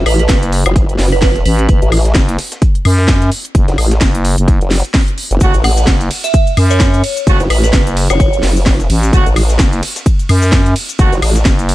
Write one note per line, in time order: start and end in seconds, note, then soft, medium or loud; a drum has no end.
0.06 0.28 A1 medium
0.06 0.15 B4 medium
0.06 closed hi-hat medium
0.06 open hi-hat loud
0.06 high woodblock medium
0.19 0.26 B4 medium
0.19 snare medium
0.19 closed hi-hat soft
0.29 0.64 F#1 loud
0.29 kick loud
0.29 snare loud
0.29 closed hi-hat medium
0.43 closed hi-hat soft
0.43 closed hi-hat medium
0.52 closed hi-hat medium
0.52 open hi-hat loud
0.66 0.98 F#1 loud
0.66 closed hi-hat medium
0.66 high woodblock medium
0.76 kick loud
0.76 closed hi-hat medium
0.89 closed hi-hat soft
0.99 1.44 F#1 loud
0.99 snare medium
0.99 open hi-hat medium
0.99 open hi-hat loud
1.12 1.19 B4 medium
1.22 1.31 B4 medium
1.22 kick loud
1.22 snare loud
1.22 closed hi-hat medium
1.22 open hi-hat medium
1.36 snare soft
1.36 closed hi-hat soft
1.45 1.67 A1 loud
1.45 1.82 B4 medium
1.45 closed hi-hat medium
1.45 open hi-hat loud
1.59 closed hi-hat soft
1.69 1.80 F#1 loud
1.69 kick loud
1.69 closed hi-hat medium
1.82 2.14 A1 loud
1.82 closed hi-hat soft
1.92 closed hi-hat medium
1.92 open hi-hat loud
1.92 high woodblock medium
2.05 snare soft
2.05 closed hi-hat soft
2.15 2.37 F#1 loud
2.15 kick loud
2.15 snare loud
2.15 closed hi-hat medium
2.29 snare soft
2.29 closed hi-hat medium
2.38 snare soft
2.38 closed hi-hat medium
2.38 open hi-hat loud
2.52 snare soft
2.52 closed hi-hat medium
2.62 kick loud
2.62 closed hi-hat medium
2.75 closed hi-hat soft
2.85 3.30 F#2 loud
2.85 closed hi-hat medium
2.85 open hi-hat loud
2.85 high woodblock medium
2.98 snare soft
3.08 kick loud
3.08 snare loud
3.08 closed hi-hat medium
3.22 snare soft
3.22 closed hi-hat soft
3.32 closed hi-hat medium
3.32 open hi-hat loud
3.45 closed hi-hat soft
3.55 3.66 F#1 loud
3.55 kick loud
3.55 closed hi-hat medium
3.68 3.77 F#1 loud
3.68 snare soft
3.68 closed hi-hat soft
3.78 4.00 A1 medium
3.78 closed hi-hat medium
3.78 open hi-hat loud
3.78 high woodblock medium
3.91 snare medium
3.91 closed hi-hat soft
4.01 4.36 F#1 loud
4.01 kick loud
4.01 snare loud
4.01 closed hi-hat medium
4.15 closed hi-hat medium
4.15 closed hi-hat soft
4.25 closed hi-hat medium
4.25 open hi-hat loud
4.38 4.59 F#1 loud
4.38 closed hi-hat medium
4.48 kick loud
4.48 closed hi-hat medium
4.61 4.82 F#1 medium
4.61 closed hi-hat soft
4.71 snare medium
4.71 open hi-hat medium
4.71 open hi-hat loud
4.85 closed hi-hat soft
4.94 kick loud
4.94 snare loud
4.94 closed hi-hat medium
4.94 open hi-hat medium
5.08 closed hi-hat soft
5.18 closed hi-hat medium
5.18 open hi-hat loud
5.31 5.39 F#1 loud
5.31 closed hi-hat soft
5.40 5.52 F#1 loud
5.40 5.52 A3 loud
5.40 5.52 C#4 medium
5.40 5.52 F#4 loud
5.40 kick loud
5.40 closed hi-hat medium
5.40 ride medium
5.40 cabasa medium
5.54 5.86 A1 loud
5.54 closed hi-hat soft
5.54 cabasa soft
5.64 5.83 F#5 medium
5.64 closed hi-hat medium
5.64 open hi-hat loud
5.64 ride medium
5.64 high woodblock medium
5.77 snare soft
5.77 closed hi-hat soft
5.77 cabasa medium
5.87 6.09 F#1 loud
5.87 kick loud
5.87 snare loud
5.87 closed hi-hat medium
5.87 ride medium
5.87 cabasa medium
6.01 snare soft
6.01 closed hi-hat medium
6.01 cabasa soft
6.11 snare soft
6.11 closed hi-hat medium
6.11 open hi-hat loud
6.11 ride medium
6.24 6.68 E5 medium
6.24 snare soft
6.24 closed hi-hat medium
6.24 cabasa medium
6.33 kick loud
6.33 closed hi-hat medium
6.33 ride medium
6.33 cabasa medium
6.47 closed hi-hat soft
6.47 cabasa soft
6.57 7.02 F#2 loud
6.57 closed hi-hat medium
6.57 open hi-hat loud
6.57 ride medium
6.57 high woodblock medium
6.70 7.17 C#5 loud
6.70 snare soft
6.70 cabasa medium
6.80 kick loud
6.80 snare loud
6.80 closed hi-hat medium
6.80 ride medium
6.80 cabasa medium
6.94 snare soft
6.94 closed hi-hat soft
6.94 cabasa soft
7.04 closed hi-hat medium
7.04 open hi-hat loud
7.04 ride medium
7.17 closed hi-hat soft
7.17 cabasa medium
7.27 7.38 F#1 loud
7.27 7.38 A3 loud
7.27 7.38 C#4 medium
7.27 7.38 F#4 loud
7.27 kick loud
7.27 closed hi-hat medium
7.27 ride medium
7.27 cabasa medium
7.40 7.49 F#1 loud
7.40 snare medium
7.40 closed hi-hat soft
7.40 cabasa soft
7.50 7.72 A1 medium
7.50 7.59 B4 medium
7.50 closed hi-hat medium
7.50 open hi-hat loud
7.50 ride medium
7.50 high woodblock medium
7.64 7.70 B4 medium
7.64 snare medium
7.64 closed hi-hat soft
7.64 cabasa medium
7.73 8.08 F#1 medium
7.73 kick loud
7.73 snare loud
7.73 closed hi-hat medium
7.73 ride medium
7.73 cabasa medium
7.87 closed hi-hat soft
7.87 closed hi-hat medium
7.87 cabasa soft
7.97 closed hi-hat medium
7.97 open hi-hat loud
7.97 ride medium
8.10 8.42 F#1 loud
8.10 8.16 C#5 medium
8.10 closed hi-hat medium
8.10 cabasa medium
8.10 high woodblock medium
8.20 8.29 C#5 medium
8.20 kick loud
8.20 closed hi-hat medium
8.20 ride medium
8.20 cabasa medium
8.33 closed hi-hat soft
8.33 cabasa soft
8.43 8.88 F#1 loud
8.43 snare medium
8.43 open hi-hat medium
8.43 open hi-hat loud
8.43 ride medium
8.57 cabasa medium
8.66 kick loud
8.66 snare loud
8.66 closed hi-hat medium
8.66 open hi-hat medium
8.66 ride medium
8.66 cabasa medium
8.80 snare soft
8.80 closed hi-hat soft
8.80 cabasa soft
8.90 9.11 A1 loud
8.90 closed hi-hat medium
8.90 open hi-hat loud
8.90 ride medium
9.03 closed hi-hat soft
9.03 cabasa medium
9.13 9.24 F#1 loud
9.13 9.24 A3 loud
9.13 9.24 C#4 loud
9.13 9.24 F#4 loud
9.13 kick loud
9.13 closed hi-hat medium
9.13 ride medium
9.13 cabasa medium
9.26 9.58 A1 loud
9.26 closed hi-hat soft
9.26 cabasa soft
9.36 closed hi-hat medium
9.36 open hi-hat loud
9.36 ride medium
9.36 high woodblock medium
9.49 snare soft
9.49 closed hi-hat soft
9.49 cabasa medium
9.59 9.81 F#1 loud
9.59 kick loud
9.59 snare loud
9.59 closed hi-hat medium
9.59 ride medium
9.59 cabasa medium
9.72 snare soft
9.72 closed hi-hat medium
9.72 cabasa soft
9.83 snare soft
9.83 closed hi-hat medium
9.83 open hi-hat loud
9.83 ride medium
9.96 snare soft
9.96 closed hi-hat medium
9.96 cabasa medium
10.06 kick loud
10.06 closed hi-hat medium
10.06 ride medium
10.06 cabasa medium
10.19 closed hi-hat soft
10.19 cabasa soft
10.29 10.74 F#2 loud
10.29 closed hi-hat medium
10.29 open hi-hat loud
10.29 ride medium
10.29 high woodblock medium
10.42 snare soft
10.42 cabasa medium
10.52 kick loud
10.52 snare loud
10.52 closed hi-hat medium
10.52 ride medium
10.52 cabasa medium
10.66 snare soft
10.66 closed hi-hat soft
10.66 cabasa soft
10.76 closed hi-hat medium
10.76 open hi-hat loud
10.76 ride medium
10.89 closed hi-hat soft
10.89 cabasa medium
10.99 11.10 F#1 loud
10.99 11.10 A3 loud
10.99 11.10 C#4 medium
10.99 11.10 F#4 loud
10.99 kick loud
10.99 closed hi-hat loud
10.99 closed hi-hat medium
10.99 ride medium
10.99 cabasa medium
11.12 11.21 F#1 loud
11.12 snare medium
11.12 closed hi-hat soft
11.12 cabasa soft
11.22 11.44 A1 loud
11.22 closed hi-hat medium
11.22 open hi-hat loud
11.22 ride medium
11.22 high woodblock medium
11.36 snare medium
11.36 closed hi-hat soft
11.36 cabasa medium
11.45 11.75 F#1 loud
11.45 kick loud
11.45 snare loud
11.45 closed hi-hat medium
11.45 ride medium
11.45 cabasa medium
11.59 closed hi-hat soft
11.59 closed hi-hat medium
11.59 cabasa soft
11.69 closed hi-hat medium
11.69 open hi-hat loud
11.69 ride medium